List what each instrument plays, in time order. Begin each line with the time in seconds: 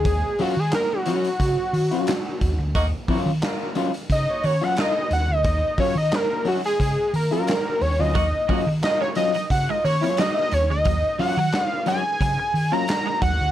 Already playing: analog synth lead G#4
0.05 fingered electric bass D#2, kick, closed hi-hat
0.39 clean electric guitar F#3 C#4 F4, analog synth lead F#4, muted fingered electric bass stroke, open hi-hat
0.57 fingered electric bass D#3, analog synth lead G#4
0.72 analog synth lead A#4, snare, clap, closed hi-hat
0.93 analog synth lead F#4
1.06 clean electric guitar F#3 C#4 F#4, closed hi-hat
1.24 closed hi-hat
1.40 fingered electric bass C#3, kick, closed hi-hat
1.73 fingered electric bass D#3, open hi-hat
1.91 clean electric guitar F#3 C#4 F4, closed hi-hat
2.07 snare, clap, closed hi-hat
2.41 fingered electric bass D#2, kick, closed hi-hat
2.58 fingered electric bass D2
2.75 fingered electric bass D#2, horn section A#3 F#4 D#5, kick, closed hi-hat
3.08 clean electric guitar F#3 C#4 F4, horn section A#3 F#4 C#5, muted fingered electric bass stroke, kick, open hi-hat
3.26 fingered electric bass D#3
3.42 horn section F#3 F4 A#4, snare, clap, closed hi-hat
3.75 clean electric guitar F#3 C#4 F4, closed hi-hat
3.94 closed hi-hat
4.10 fingered electric bass C#3, analog synth lead D#5, kick, closed hi-hat
4.28 horn section A#3 F#4 C#5
4.43 fingered electric bass D#3, horn section A#3 F#4 C#5, analog synth lead C#5, open hi-hat
4.61 clean electric guitar F#3 C#4 F4, analog synth lead F#5
4.76 horn section F#3 F4 A#4, analog synth lead D#5, snare, clap, closed hi-hat
5.10 fingered electric bass D#2, analog synth lead F#5, closed hi-hat
5.28 fingered electric bass D2, analog synth lead D#5
5.44 fingered electric bass D#2, kick, closed hi-hat
5.78 clean electric guitar F#3 C#4 F4, analog synth lead C#5, muted fingered electric bass stroke, kick, open hi-hat
5.95 fingered electric bass D#3, analog synth lead D#5
6.12 analog synth lead A#4, snare, clap, closed hi-hat
6.45 clean electric guitar F#3 C#4 F#4, analog synth lead F#4, open hi-hat
6.64 analog synth lead G#4, closed hi-hat
6.80 fingered electric bass C#3, kick, closed hi-hat
7.13 fingered electric bass D#3, analog synth lead A#4, open hi-hat
7.31 clean electric guitar F#3 C#4 F4, analog synth lead A#4, closed hi-hat
7.47 snare, clap, closed hi-hat
7.81 fingered electric bass D#2, analog synth lead C#5, open hi-hat
7.99 fingered electric bass D2, clean electric guitar F#3 C#4 F4, analog synth lead D#5
8.15 fingered electric bass D#2, clean electric guitar F#3, horn section A#3 F#4 D#5, kick, closed hi-hat
8.48 clean electric guitar F#3 A#3 C#4 F4, horn section A#3 F#4 C#5, muted fingered electric bass stroke, kick, open hi-hat
8.67 fingered electric bass D#3, muted clean electric guitar stroke
8.82 horn section F#3 F4 A#4, analog synth lead D#5, snare, clap, closed hi-hat
9.01 clean electric guitar G#3, analog synth lead C#5
9.15 clean electric guitar F#3 C#4 F4, analog synth lead D#5, muted clean electric guitar stroke, closed hi-hat
9.34 clean electric guitar F#3, analog synth lead D#5, closed hi-hat
9.50 fingered electric bass C#3, analog synth lead F#5, kick, closed hi-hat
9.68 horn section F#3 F4 A#4, clean electric guitar G#3, analog synth lead D#5
9.84 fingered electric bass D#3, horn section A#3 F#4 C#5, analog synth lead C#5, muted clean electric guitar stroke, open hi-hat
10.01 clean electric guitar F#3 A#3 C#4 F4, analog synth lead C#5, closed hi-hat
10.17 clean electric guitar F#3, horn section A#3 F#4 D#5, analog synth lead D#5, snare, clap, closed hi-hat
10.38 analog synth lead D#5
10.51 fingered electric bass D#2, analog synth lead C#5, muted clean electric guitar stroke, closed hi-hat
10.70 fingered electric bass D2, clean electric guitar G#3, analog synth lead D#5
10.85 fingered electric bass D#2, clean electric guitar F#3, kick, closed hi-hat
11.19 clean electric guitar F#3 C#4 F4, analog synth lead F#5, muted fingered electric bass stroke, muted clean electric guitar stroke, open hi-hat
11.37 fingered electric bass D#3, clean electric guitar F#3
11.53 snare, clap, closed hi-hat
11.65 analog synth lead F5
11.86 clean electric guitar F#3 G#3 C#4 F#4, analog synth lead G#5, closed hi-hat
12.21 fingered electric bass C#3, clean electric guitar F#3, kick, closed hi-hat
12.38 muted clean electric guitar stroke
12.54 fingered electric bass D#3, open hi-hat
12.72 clean electric guitar F#3 A#3 C#4 F4, analog synth lead A#5
12.88 muted clean electric guitar stroke, snare, clap, closed hi-hat
13.06 clean electric guitar G#3
13.22 fingered electric bass D#2, clean electric guitar F#3, analog synth lead F#5, kick, closed hi-hat
13.40 fingered electric bass D2